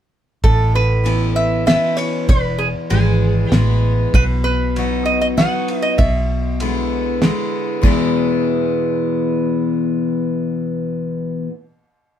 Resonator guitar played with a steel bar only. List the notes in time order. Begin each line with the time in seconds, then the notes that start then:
0.44 A4
0.75 B4
1.36 E5
1.67 E5
1.97 C#5
2.29 B4
2.58 G#4
2.90 G#4
3.53 F#4
4.15 B4
4.44 B4
5.06 D#5
5.21 D#5
5.38 F#5
5.82 D#5
5.98 E5